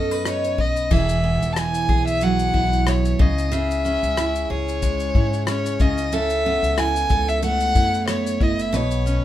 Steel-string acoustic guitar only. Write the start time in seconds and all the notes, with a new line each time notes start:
Already playing: B2 C#4 D#4 A4
0.11 B4
0.25 D#4
0.58 B4
0.91 E3 G#4
1.24 B3
1.56 E4
1.89 G#4
2.22 F#3
2.54 E4
2.87 B3
3.19 C#3
3.52 C#3 G#4
3.85 C#4
4.17 E4
4.50 G#4
4.83 G#3
5.15 E4
5.48 C#4
5.80 C#3
6.13 C#3 A4
6.46 B3
6.78 E4
7.11 A4
7.43 A3
7.75 E4
8.08 B3
8.41 E4
8.73 B2 B4
9.06 C#4